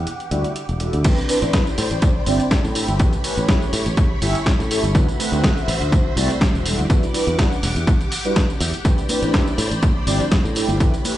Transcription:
Already playing: string machine G4 F#5 D6
0.07 closed hi-hat
0.20 closed hi-hat
0.31 fingered electric bass D2, analog polysynth G3 D4 E4 F#4 E5, closed hi-hat
0.44 closed hi-hat
0.56 closed hi-hat
0.69 fingered electric bass E1, closed hi-hat
0.80 analog polysynth G3 D4 E4 F#4 A4, closed hi-hat
0.93 fingered electric bass D2, closed hi-hat
1.04 fingered electric bass A1, analog polysynth C4 D4 E4 G4 B4, string machine G4 C5 D5 B5, kick, closed hi-hat, tambourine, crash
1.18 closed hi-hat, tambourine
1.29 analog polysynth C4 D4 E4 G4 B4, open hi-hat, tambourine
1.42 fingered electric bass A1, analog polysynth C4 D4 E4 G4 B4, closed hi-hat, tambourine
1.53 analog polysynth C4 D4 E4 G4 B4, kick, snare, closed hi-hat, tambourine
1.67 tambourine
1.78 fingered electric bass A2, open hi-hat, tambourine
1.91 fingered electric bass A1, closed hi-hat, tambourine
2.02 kick, closed hi-hat, tambourine
2.26 fingered electric bass G1, analog polysynth C4 D4 E4 G4 D5, open hi-hat, tambourine
2.40 closed hi-hat, tambourine
2.51 kick, snare, closed hi-hat, tambourine
2.64 fingered electric bass A2, tambourine
2.75 analog polysynth C4 D4 E4 G4 A4, open hi-hat, tambourine
2.88 fingered electric bass G1, closed hi-hat, tambourine
2.99 fingered electric bass A1, analog polysynth A3 C#4 E4 G4 B4, string machine C#5, kick, closed hi-hat, tambourine
3.13 closed hi-hat, tambourine
3.24 analog polysynth A3 C#4 E4 G4 B4, open hi-hat, tambourine
3.37 fingered electric bass A1, analog polysynth A3 C#4 E4 G4 B4, closed hi-hat, tambourine
3.48 analog polysynth A3 C#4 E4 G4 B4, kick, snare, closed hi-hat, tambourine
3.62 tambourine
3.73 fingered electric bass A2, open hi-hat, tambourine
3.86 fingered electric bass A1, closed hi-hat, tambourine
3.97 kick, closed hi-hat, tambourine
4.21 fingered electric bass G1, analog polysynth A3 C#4 E4 G4 E5, open hi-hat, tambourine
4.35 closed hi-hat, tambourine
4.46 kick, snare, closed hi-hat, tambourine
4.59 fingered electric bass A2, tambourine
4.70 analog polysynth A3 C#4 E4 G4 A4, open hi-hat, tambourine
4.83 fingered electric bass G1, closed hi-hat, tambourine
4.94 fingered electric bass D2, analog polysynth A3 C4 E4 F#4 B4, string machine F#4 C5 E5, kick, closed hi-hat, tambourine
5.09 closed hi-hat, tambourine
5.19 analog polysynth A3 C4 E4 F#4 B4, open hi-hat, tambourine
5.32 fingered electric bass D2, analog polysynth A3 C4 E4 F#4 B4, closed hi-hat, tambourine
5.43 analog polysynth A3 C4 E4 F#4, kick, snare, closed hi-hat, tambourine
5.58 tambourine
5.68 fingered electric bass A1, open hi-hat, tambourine
5.81 fingered electric bass D2, closed hi-hat, tambourine
5.92 kick, closed hi-hat, tambourine
6.16 fingered electric bass C2, analog polysynth A3 C4 E4 F#4 D5, open hi-hat, tambourine
6.30 closed hi-hat, tambourine
6.41 kick, snare, closed hi-hat, tambourine
6.54 fingered electric bass E1, tambourine
6.65 analog polysynth G3 D4 E4 F#4 A4, string machine G4 F#5 D6, open hi-hat, tambourine
6.78 fingered electric bass D2, closed hi-hat, tambourine
6.89 fingered electric bass E2, analog polysynth G3 D4 E4 F#4 B4, kick, closed hi-hat, tambourine
7.03 closed hi-hat, tambourine
7.13 analog polysynth G3 D4 E4 F#4 B4, open hi-hat, tambourine
7.26 fingered electric bass E2, analog polysynth G3 D4 E4 F#4 B4, closed hi-hat, tambourine
7.38 analog polysynth G3 D4 E4 F#4 B4, kick, snare, closed hi-hat, tambourine
7.52 tambourine
7.63 fingered electric bass E1, snare, open hi-hat, tambourine
7.76 fingered electric bass E2, closed hi-hat, tambourine
7.87 kick, closed hi-hat, tambourine
8.01 closed hi-hat, tambourine
8.12 open hi-hat, tambourine
8.24 analog polysynth G3 D4 E4 F#4 B4, closed hi-hat, tambourine
8.36 kick, snare, closed hi-hat, tambourine
8.50 tambourine
8.60 fingered electric bass E2, open hi-hat, tambourine
8.74 closed hi-hat, tambourine
8.84 fingered electric bass A1, analog polysynth C4 D4 E4 G4 B4, string machine C5 D5 B5, kick, closed hi-hat, tambourine
8.98 closed hi-hat, tambourine
9.09 analog polysynth C4 D4 E4 G4 B4, open hi-hat, tambourine, high conga
9.22 fingered electric bass A1, analog polysynth C4 D4 E4 G4 B4, closed hi-hat, tambourine
9.33 analog polysynth C4 D4 E4 G4 B4, kick, snare, closed hi-hat, tambourine
9.47 tambourine, high conga
9.58 fingered electric bass A2, open hi-hat, tambourine
9.71 fingered electric bass A1, closed hi-hat, tambourine
9.82 kick, closed hi-hat, tambourine, high conga
10.07 fingered electric bass G1, analog polysynth C4 D4 E4 G4 D5, open hi-hat, tambourine
10.19 closed hi-hat, tambourine, high conga, low conga
10.31 kick, snare, closed hi-hat, tambourine
10.44 fingered electric bass A2, tambourine
10.55 analog polysynth C4 D4 E4 G4 A4, open hi-hat, tambourine
10.69 fingered electric bass G1, closed hi-hat, tambourine, high conga
10.80 fingered electric bass A1, analog polysynth A3 C#4 E4 G4 B4, string machine G4 C#5, kick, closed hi-hat, tambourine
10.94 closed hi-hat, tambourine
11.04 analog polysynth A3 C#4 E4 G4 B4, open hi-hat, tambourine, high conga

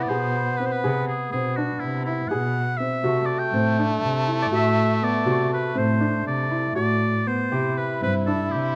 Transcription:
Already playing: french horn B3
0.03 oboe D5
0.08 cello B2, felt piano G#4, oboe C5
0.57 felt piano C4, oboe B4
0.66 oboe C5
0.72 oboe B4
0.84 cello C3, felt piano G#4
1.08 oboe G#4
1.32 cello B2, felt piano C4, oboe G#4
1.56 felt piano D4, oboe F#4
1.80 cello C3, oboe E4
2.05 oboe E4, felt piano E4
2.28 cello B2, felt piano G#4, oboe F#5
2.77 felt piano C4, oboe E5
3.03 cello C3, french horn A3, felt piano F#4
3.26 oboe D5
3.39 oboe G5
3.52 cello A2, felt piano C4
3.79 felt piano D4
4.02 cello C3
4.27 felt piano E4
4.42 oboe D5
4.50 cello A2, felt piano F#4
4.55 oboe E5
5.02 felt piano B3, oboe D5
5.26 cello C3, felt piano F#4
5.53 oboe B4
5.75 cello A2, felt piano C4, oboe C5
6.00 felt piano D4
6.26 cello C3, oboe D5
6.51 felt piano E4
6.75 cello A2, felt piano F#4, oboe D5
7.26 felt piano B3, oboe C5
7.51 cello C3, french horn E4, felt piano G4
7.77 oboe B4
8.02 cello G2, felt piano C4, oboe B4
8.26 felt piano D4, oboe A4
8.51 cello C3, oboe G4

